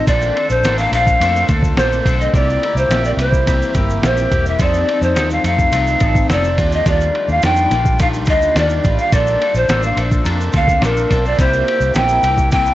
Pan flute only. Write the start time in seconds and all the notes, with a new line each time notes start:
0.08 D5
0.50 C5
0.78 F5
0.93 F5
1.77 C5
2.20 D#5
2.35 D5
2.78 C5
3.06 D5
3.20 C5
4.06 C5
4.48 E5
4.62 D5
5.03 C5
5.33 F5
5.46 F5
6.32 D5
6.74 D#5
6.89 D5
7.31 F5
7.44 G5
8.01 F5
8.30 D#5
8.58 D5
9.00 F5
9.14 D5
9.56 C5
9.85 F5
10.56 F5
10.84 A#4
11.27 D5
11.40 C5
11.95 G5
12.52 G5